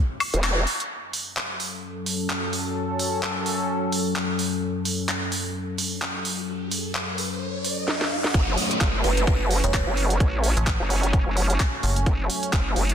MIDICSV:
0, 0, Header, 1, 8, 480
1, 0, Start_track
1, 0, Key_signature, 3, "minor"
1, 0, Tempo, 465116
1, 930, Time_signature, 4, 2, 24, 8
1, 13358, End_track
2, 0, Start_track
2, 0, Title_t, "Kalimba"
2, 0, Program_c, 0, 108
2, 9330, Note_on_c, 0, 71, 91
2, 9417, Note_off_c, 0, 71, 0
2, 9467, Note_on_c, 0, 71, 73
2, 9533, Note_off_c, 0, 71, 0
2, 9946, Note_on_c, 0, 73, 87
2, 10426, Note_off_c, 0, 73, 0
2, 13358, End_track
3, 0, Start_track
3, 0, Title_t, "Analog synth pad"
3, 0, Program_c, 1, 89
3, 930, Note_on_c, 1, 42, 80
3, 930, Note_on_c, 1, 54, 73
3, 930, Note_on_c, 1, 61, 75
3, 930, Note_on_c, 1, 69, 90
3, 8088, Note_off_c, 1, 61, 0
3, 8089, Note_off_c, 1, 42, 0
3, 8089, Note_off_c, 1, 54, 0
3, 8089, Note_off_c, 1, 69, 0
3, 8610, Note_on_c, 1, 57, 81
3, 8611, Note_on_c, 1, 54, 85
3, 8611, Note_on_c, 1, 61, 95
3, 13358, Note_off_c, 1, 54, 0
3, 13358, Note_off_c, 1, 57, 0
3, 13358, Note_off_c, 1, 61, 0
3, 13358, End_track
4, 0, Start_track
4, 0, Title_t, "FM bass"
4, 0, Program_c, 2, 39
4, 9947, Note_on_c, 2, 28, 99
4, 10165, Note_off_c, 2, 28, 0
4, 10907, Note_on_c, 2, 33, 100
4, 11125, Note_off_c, 2, 33, 0
4, 12210, Note_on_c, 2, 30, 96
4, 12434, Note_off_c, 2, 30, 0
4, 13358, End_track
5, 0, Start_track
5, 0, Title_t, "Wobble bass"
5, 0, Program_c, 3, 39
5, 347, Note_on_c, 3, 28, 98
5, 673, Note_off_c, 3, 28, 0
5, 8610, Note_on_c, 3, 30, 100
5, 8833, Note_off_c, 3, 30, 0
5, 9090, Note_on_c, 3, 30, 100
5, 9313, Note_off_c, 3, 30, 0
5, 9330, Note_on_c, 3, 30, 102
5, 9553, Note_off_c, 3, 30, 0
5, 9570, Note_on_c, 3, 30, 95
5, 9925, Note_off_c, 3, 30, 0
5, 10186, Note_on_c, 3, 30, 101
5, 10513, Note_off_c, 3, 30, 0
5, 10530, Note_on_c, 3, 33, 96
5, 10885, Note_off_c, 3, 33, 0
5, 11146, Note_on_c, 3, 30, 97
5, 11605, Note_off_c, 3, 30, 0
5, 11627, Note_on_c, 3, 30, 102
5, 11953, Note_off_c, 3, 30, 0
5, 12450, Note_on_c, 3, 30, 102
5, 12673, Note_off_c, 3, 30, 0
5, 12930, Note_on_c, 3, 30, 103
5, 13153, Note_off_c, 3, 30, 0
5, 13170, Note_on_c, 3, 30, 101
5, 13358, Note_off_c, 3, 30, 0
5, 13358, End_track
6, 0, Start_track
6, 0, Title_t, "Downlifter"
6, 0, Program_c, 4, 103
6, 8610, Note_on_c, 4, 60, 81
6, 12450, Note_off_c, 4, 60, 0
6, 13358, End_track
7, 0, Start_track
7, 0, Title_t, "Riser"
7, 0, Program_c, 5, 103
7, 4769, Note_on_c, 5, 60, 73
7, 8610, Note_off_c, 5, 60, 0
7, 13358, End_track
8, 0, Start_track
8, 0, Title_t, "Drums"
8, 210, Note_on_c, 9, 46, 104
8, 210, Note_on_c, 9, 76, 88
8, 313, Note_off_c, 9, 46, 0
8, 313, Note_off_c, 9, 76, 0
8, 347, Note_on_c, 9, 42, 71
8, 450, Note_off_c, 9, 42, 0
8, 450, Note_on_c, 9, 42, 55
8, 450, Note_on_c, 9, 76, 69
8, 452, Note_on_c, 9, 39, 120
8, 553, Note_off_c, 9, 42, 0
8, 553, Note_off_c, 9, 76, 0
8, 555, Note_off_c, 9, 39, 0
8, 690, Note_on_c, 9, 46, 91
8, 794, Note_off_c, 9, 46, 0
8, 827, Note_on_c, 9, 42, 71
8, 930, Note_off_c, 9, 42, 0
8, 1170, Note_on_c, 9, 46, 98
8, 1274, Note_off_c, 9, 46, 0
8, 1412, Note_on_c, 9, 39, 118
8, 1515, Note_off_c, 9, 39, 0
8, 1650, Note_on_c, 9, 46, 87
8, 1753, Note_off_c, 9, 46, 0
8, 2130, Note_on_c, 9, 46, 98
8, 2233, Note_off_c, 9, 46, 0
8, 2372, Note_on_c, 9, 39, 118
8, 2475, Note_off_c, 9, 39, 0
8, 2610, Note_on_c, 9, 46, 87
8, 2713, Note_off_c, 9, 46, 0
8, 3090, Note_on_c, 9, 46, 104
8, 3193, Note_off_c, 9, 46, 0
8, 3332, Note_on_c, 9, 39, 117
8, 3435, Note_off_c, 9, 39, 0
8, 3570, Note_on_c, 9, 46, 89
8, 3674, Note_off_c, 9, 46, 0
8, 4050, Note_on_c, 9, 46, 102
8, 4153, Note_off_c, 9, 46, 0
8, 4292, Note_on_c, 9, 39, 117
8, 4395, Note_off_c, 9, 39, 0
8, 4530, Note_on_c, 9, 46, 92
8, 4633, Note_off_c, 9, 46, 0
8, 5009, Note_on_c, 9, 46, 100
8, 5112, Note_off_c, 9, 46, 0
8, 5251, Note_on_c, 9, 39, 117
8, 5354, Note_off_c, 9, 39, 0
8, 5489, Note_on_c, 9, 46, 96
8, 5593, Note_off_c, 9, 46, 0
8, 5969, Note_on_c, 9, 46, 101
8, 6072, Note_off_c, 9, 46, 0
8, 6212, Note_on_c, 9, 39, 116
8, 6315, Note_off_c, 9, 39, 0
8, 6450, Note_on_c, 9, 46, 97
8, 6553, Note_off_c, 9, 46, 0
8, 6930, Note_on_c, 9, 46, 103
8, 7033, Note_off_c, 9, 46, 0
8, 7171, Note_on_c, 9, 39, 118
8, 7275, Note_off_c, 9, 39, 0
8, 7410, Note_on_c, 9, 46, 91
8, 7513, Note_off_c, 9, 46, 0
8, 7890, Note_on_c, 9, 46, 103
8, 7993, Note_off_c, 9, 46, 0
8, 8130, Note_on_c, 9, 38, 57
8, 8233, Note_off_c, 9, 38, 0
8, 8267, Note_on_c, 9, 38, 61
8, 8370, Note_off_c, 9, 38, 0
8, 8507, Note_on_c, 9, 38, 77
8, 8610, Note_off_c, 9, 38, 0
8, 8610, Note_on_c, 9, 36, 115
8, 8610, Note_on_c, 9, 42, 56
8, 8713, Note_off_c, 9, 36, 0
8, 8713, Note_off_c, 9, 42, 0
8, 8849, Note_on_c, 9, 46, 104
8, 8953, Note_off_c, 9, 46, 0
8, 8986, Note_on_c, 9, 42, 69
8, 9089, Note_off_c, 9, 42, 0
8, 9089, Note_on_c, 9, 42, 56
8, 9090, Note_on_c, 9, 36, 110
8, 9091, Note_on_c, 9, 39, 127
8, 9193, Note_off_c, 9, 36, 0
8, 9193, Note_off_c, 9, 42, 0
8, 9194, Note_off_c, 9, 39, 0
8, 9329, Note_on_c, 9, 46, 90
8, 9432, Note_off_c, 9, 46, 0
8, 9466, Note_on_c, 9, 42, 73
8, 9569, Note_off_c, 9, 42, 0
8, 9570, Note_on_c, 9, 36, 123
8, 9570, Note_on_c, 9, 42, 55
8, 9673, Note_off_c, 9, 36, 0
8, 9673, Note_off_c, 9, 42, 0
8, 9810, Note_on_c, 9, 46, 110
8, 9913, Note_off_c, 9, 46, 0
8, 9946, Note_on_c, 9, 42, 71
8, 10050, Note_off_c, 9, 42, 0
8, 10050, Note_on_c, 9, 36, 107
8, 10050, Note_on_c, 9, 42, 55
8, 10050, Note_on_c, 9, 76, 69
8, 10052, Note_on_c, 9, 39, 126
8, 10153, Note_off_c, 9, 36, 0
8, 10153, Note_off_c, 9, 42, 0
8, 10153, Note_off_c, 9, 76, 0
8, 10155, Note_off_c, 9, 39, 0
8, 10290, Note_on_c, 9, 46, 91
8, 10393, Note_off_c, 9, 46, 0
8, 10427, Note_on_c, 9, 42, 72
8, 10530, Note_off_c, 9, 42, 0
8, 10530, Note_on_c, 9, 36, 117
8, 10530, Note_on_c, 9, 42, 56
8, 10633, Note_off_c, 9, 36, 0
8, 10633, Note_off_c, 9, 42, 0
8, 10770, Note_on_c, 9, 46, 112
8, 10873, Note_off_c, 9, 46, 0
8, 10906, Note_on_c, 9, 42, 69
8, 11010, Note_off_c, 9, 42, 0
8, 11010, Note_on_c, 9, 36, 112
8, 11010, Note_on_c, 9, 42, 55
8, 11011, Note_on_c, 9, 39, 127
8, 11113, Note_off_c, 9, 36, 0
8, 11113, Note_off_c, 9, 42, 0
8, 11115, Note_off_c, 9, 39, 0
8, 11250, Note_on_c, 9, 46, 96
8, 11353, Note_off_c, 9, 46, 0
8, 11387, Note_on_c, 9, 42, 68
8, 11490, Note_off_c, 9, 42, 0
8, 11490, Note_on_c, 9, 36, 127
8, 11490, Note_on_c, 9, 42, 56
8, 11593, Note_off_c, 9, 36, 0
8, 11593, Note_off_c, 9, 42, 0
8, 11730, Note_on_c, 9, 46, 106
8, 11833, Note_off_c, 9, 46, 0
8, 11867, Note_on_c, 9, 42, 70
8, 11970, Note_off_c, 9, 42, 0
8, 11970, Note_on_c, 9, 36, 111
8, 11970, Note_on_c, 9, 42, 51
8, 11970, Note_on_c, 9, 76, 61
8, 11972, Note_on_c, 9, 39, 123
8, 12073, Note_off_c, 9, 36, 0
8, 12073, Note_off_c, 9, 42, 0
8, 12073, Note_off_c, 9, 76, 0
8, 12075, Note_off_c, 9, 39, 0
8, 12210, Note_on_c, 9, 46, 98
8, 12313, Note_off_c, 9, 46, 0
8, 12347, Note_on_c, 9, 42, 69
8, 12450, Note_off_c, 9, 42, 0
8, 12450, Note_on_c, 9, 36, 125
8, 12450, Note_on_c, 9, 42, 55
8, 12553, Note_off_c, 9, 36, 0
8, 12553, Note_off_c, 9, 42, 0
8, 12690, Note_on_c, 9, 46, 110
8, 12793, Note_off_c, 9, 46, 0
8, 12827, Note_on_c, 9, 42, 65
8, 12930, Note_off_c, 9, 42, 0
8, 12930, Note_on_c, 9, 36, 116
8, 12930, Note_on_c, 9, 42, 52
8, 12932, Note_on_c, 9, 39, 126
8, 13033, Note_off_c, 9, 36, 0
8, 13034, Note_off_c, 9, 42, 0
8, 13035, Note_off_c, 9, 39, 0
8, 13170, Note_on_c, 9, 46, 98
8, 13273, Note_off_c, 9, 46, 0
8, 13307, Note_on_c, 9, 42, 66
8, 13358, Note_off_c, 9, 42, 0
8, 13358, End_track
0, 0, End_of_file